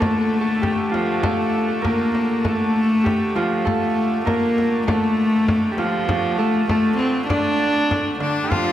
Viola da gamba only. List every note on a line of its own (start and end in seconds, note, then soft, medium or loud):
0.03 0.93 A3 medium
0.94 1.26 F3 medium
1.25 1.85 A3 medium
1.85 2.47 A#3 medium
2.46 3.37 A3 loud
3.36 3.68 F3 medium
3.66 4.25 A3 medium
4.25 4.83 A#3 medium
4.88 5.74 A3 loud
5.78 6.39 F3 medium
6.38 6.67 A3 medium
6.68 6.96 A3 medium
6.98 7.26 C4 medium
7.28 8.15 D4 loud
8.21 8.49 D3 medium
8.52 8.72 F3 medium